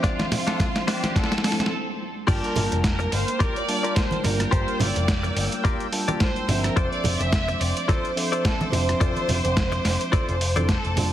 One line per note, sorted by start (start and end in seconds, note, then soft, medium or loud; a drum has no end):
0.00 1.40 F3 medium
0.00 1.41 C4 medium
0.00 1.41 D4 medium
0.00 0.25 D4 loud
0.00 0.25 F4 loud
0.00 1.41 C5 medium
0.00 1.68 C5 medium
0.00 0.25 D5 loud
0.00 1.41 E5 medium
0.00 1.70 C6 medium
0.00 kick loud
0.00 snare medium
0.00 closed hi-hat medium
0.05 0.88 F4 loud
0.19 snare medium
0.19 closed hi-hat soft
0.19 high conga medium
0.32 snare medium
0.32 open hi-hat loud
0.32 low conga medium
0.47 0.67 D4 medium
0.47 0.68 F4 medium
0.47 0.68 A4 loud
0.47 snare medium
0.47 closed hi-hat soft
0.47 muted conga medium
0.60 kick loud
0.60 snare loud
0.60 closed hi-hat soft
0.60 high conga medium
0.76 snare medium
0.76 closed hi-hat soft
0.76 muted conga soft
0.87 1.31 D4 medium
0.87 1.31 F4 medium
0.87 1.16 G4 loud
0.87 1.31 C5 loud
0.87 snare loud
0.87 open hi-hat loud
1.03 snare medium
1.03 closed hi-hat soft
1.03 high conga medium
1.16 1.43 A4 loud
1.16 kick loud
1.16 snare medium
1.16 closed hi-hat soft
1.24 snare medium
1.32 snare medium
1.32 closed hi-hat soft
1.38 snare medium
1.43 1.72 F3 medium
1.43 1.72 C4 medium
1.43 1.72 D4 medium
1.43 1.72 E4 medium
1.43 1.70 A4 loud
1.43 1.72 A4 medium
1.43 snare loud
1.43 open hi-hat loud
1.52 snare medium
1.59 snare medium
1.59 closed hi-hat soft
1.59 high conga medium
1.66 snare medium
2.27 2.38 G1 loud
2.27 3.12 G3 loud
2.27 3.12 A#3 medium
2.27 6.72 A#3 medium
2.27 3.12 D4 medium
2.27 2.64 F4 loud
2.27 3.12 F4 medium
2.27 2.64 G4 loud
2.27 2.42 G4 loud
2.27 2.64 A#4 medium
2.27 2.64 D5 loud
2.27 6.72 G5 medium
2.27 3.13 A5 loud
2.27 4.50 F6 medium
2.27 kick loud
2.27 closed hi-hat medium
2.27 crash loud
2.44 2.81 A#4 medium
2.44 closed hi-hat soft
2.56 2.66 G1 medium
2.56 open hi-hat loud
2.56 low conga loud
2.72 3.05 F1 medium
2.72 closed hi-hat medium
2.72 muted conga medium
2.84 3.10 A#4 loud
2.84 kick loud
2.84 snare loud
2.84 closed hi-hat medium
2.99 muted clean electric guitar stroke medium
2.99 closed hi-hat soft
2.99 muted conga medium
3.12 3.22 G1 loud
3.12 3.40 C5 loud
3.12 muted clean electric guitar stroke soft
3.12 open hi-hat loud
3.28 closed hi-hat medium
3.39 3.62 F4 medium
3.39 3.62 G4 medium
3.39 3.62 A#4 medium
3.39 3.56 A#4 loud
3.39 3.62 D5 loud
3.39 kick loud
3.39 cross-stick medium
3.39 closed hi-hat medium
3.56 3.96 D5 loud
3.56 closed hi-hat soft
3.68 4.21 G3 medium
3.68 4.21 A#3 medium
3.68 4.21 D4 medium
3.68 4.21 F4 medium
3.68 4.22 A5 medium
3.68 open hi-hat loud
3.83 4.04 F4 medium
3.83 4.04 G4 medium
3.83 4.04 A#4 medium
3.83 4.04 D5 medium
3.83 closed hi-hat medium
3.96 4.24 C5 loud
3.96 kick loud
3.96 snare loud
3.96 closed hi-hat medium
4.11 closed hi-hat soft
4.11 high conga medium
4.23 4.44 G1 medium
4.23 5.89 G3 medium
4.23 5.89 A#3 medium
4.23 5.89 D4 medium
4.23 5.90 F4 medium
4.23 4.52 A#4 loud
4.23 5.90 A#4 medium
4.23 muted clean electric guitar stroke soft
4.23 open hi-hat loud
4.23 low conga medium
4.40 cross-stick medium
4.40 closed hi-hat medium
4.51 4.63 G1 loud
4.51 4.88 F4 loud
4.51 4.88 G4 loud
4.51 4.88 A#4 loud
4.51 4.88 C5 loud
4.51 4.80 C5 loud
4.51 6.74 E6 medium
4.51 kick loud
4.51 closed hi-hat medium
4.68 closed hi-hat soft
4.80 4.91 G1 medium
4.80 5.64 D5 loud
4.80 open hi-hat loud
4.80 low conga loud
4.95 5.29 F1 medium
4.95 closed hi-hat medium
4.95 muted conga medium
5.08 kick loud
5.08 snare loud
5.08 closed hi-hat medium
5.23 muted clean electric guitar stroke medium
5.23 closed hi-hat soft
5.23 muted conga medium
5.36 5.46 G1 loud
5.36 muted clean electric guitar stroke soft
5.36 open hi-hat loud
5.52 closed hi-hat medium
5.64 5.86 F4 medium
5.64 5.86 G4 medium
5.64 5.86 A#4 medium
5.64 5.86 D5 medium
5.64 kick loud
5.64 cross-stick medium
5.64 closed hi-hat soft
5.80 closed hi-hat soft
5.92 6.45 G3 medium
5.92 6.45 A#3 medium
5.92 6.46 D4 medium
5.92 6.46 F4 medium
5.92 6.46 A5 medium
5.92 open hi-hat loud
6.08 6.28 F4 medium
6.08 6.28 G4 medium
6.08 6.28 A#4 medium
6.08 6.28 D5 loud
6.08 closed hi-hat medium
6.08 high conga loud
6.20 6.61 C5 loud
6.20 kick loud
6.20 snare loud
6.20 closed hi-hat medium
6.36 closed hi-hat soft
6.47 6.68 G1 loud
6.47 8.13 F3 medium
6.47 8.14 C4 medium
6.47 8.14 D4 medium
6.47 8.14 C5 medium
6.47 8.14 E5 medium
6.47 muted clean electric guitar stroke soft
6.47 open hi-hat loud
6.47 low conga medium
6.64 6.76 A#4 loud
6.64 cross-stick medium
6.64 closed hi-hat medium
6.76 6.87 F1 loud
6.76 7.12 F4 loud
6.76 7.12 A4 loud
6.76 6.92 C5 loud
6.76 11.13 C5 medium
6.76 7.12 C5 loud
6.76 7.13 D5 loud
6.76 11.13 D6 medium
6.76 kick loud
6.76 closed hi-hat medium
6.92 7.18 D5 loud
6.92 closed hi-hat soft
7.04 7.15 F1 medium
7.04 open hi-hat loud
7.04 low conga loud
7.20 7.54 F1 medium
7.20 7.61 E5 loud
7.20 closed hi-hat medium
7.20 muted conga medium
7.33 kick loud
7.33 snare loud
7.33 closed hi-hat medium
7.48 muted clean electric guitar stroke medium
7.48 closed hi-hat soft
7.48 muted conga soft
7.61 7.71 F1 loud
7.61 7.89 D5 loud
7.61 muted clean electric guitar stroke soft
7.61 open hi-hat loud
7.77 closed hi-hat medium
7.88 8.10 F4 medium
7.88 8.11 A4 medium
7.88 8.15 C5 loud
7.88 8.11 C5 medium
7.88 8.11 D5 medium
7.88 kick loud
7.88 cross-stick medium
7.88 closed hi-hat soft
8.05 closed hi-hat soft
8.16 8.69 F3 medium
8.16 8.70 C4 medium
8.16 8.70 D4 medium
8.16 8.70 A4 medium
8.16 8.43 C5 loud
8.16 8.70 E5 medium
8.16 open hi-hat loud
8.32 8.52 F4 medium
8.32 8.52 A4 medium
8.32 8.53 C5 medium
8.32 8.53 D5 loud
8.32 closed hi-hat medium
8.44 8.72 A4 loud
8.44 kick loud
8.44 snare loud
8.44 closed hi-hat medium
8.61 closed hi-hat soft
8.61 high conga loud
8.72 8.92 F1 medium
8.72 10.38 F3 medium
8.72 10.38 C4 medium
8.72 10.38 D4 medium
8.72 10.65 C5 loud
8.72 10.39 C5 medium
8.72 10.38 E5 medium
8.72 muted clean electric guitar stroke soft
8.72 open hi-hat loud
8.72 low conga medium
8.89 cross-stick medium
8.89 closed hi-hat medium
9.00 9.11 F1 loud
9.00 9.37 F4 loud
9.00 9.37 A4 loud
9.00 9.37 C5 medium
9.00 9.37 D5 loud
9.00 kick loud
9.00 closed hi-hat medium
9.16 closed hi-hat soft
9.16 high conga medium
9.28 9.39 F1 medium
9.28 open hi-hat loud
9.28 low conga medium
9.44 9.78 F1 medium
9.44 closed hi-hat medium
9.44 muted conga medium
9.57 kick loud
9.57 snare loud
9.57 closed hi-hat medium
9.72 muted clean electric guitar stroke medium
9.72 closed hi-hat soft
9.72 muted conga soft
9.84 9.95 F1 loud
9.84 muted clean electric guitar stroke soft
9.84 snare medium
9.84 open hi-hat medium
10.01 closed hi-hat soft
10.12 10.35 F4 medium
10.12 10.35 A4 medium
10.12 10.35 C5 medium
10.12 10.35 D5 loud
10.12 kick loud
10.12 cross-stick medium
10.12 closed hi-hat soft
10.29 10.76 F1 loud
10.29 closed hi-hat soft
10.41 open hi-hat loud
10.56 10.70 F3 medium
10.56 10.70 C4 medium
10.56 10.70 D4 medium
10.56 10.70 E4 medium
10.56 10.77 F4 medium
10.56 10.77 A4 medium
10.56 10.70 A4 loud
10.56 10.77 C5 medium
10.56 10.77 D5 medium
10.56 closed hi-hat medium
10.56 high conga loud
10.69 11.10 A4 medium
10.69 kick loud
10.69 snare loud
10.69 closed hi-hat medium
10.85 11.13 F1 medium
10.85 closed hi-hat soft
10.96 11.13 G3 medium
10.96 11.13 A#3 medium
10.96 11.13 D4 medium
10.96 11.13 F4 medium
10.96 11.13 A5 loud
10.96 muted clean electric guitar stroke soft
10.96 open hi-hat loud
10.96 muted conga medium
10.96 low conga medium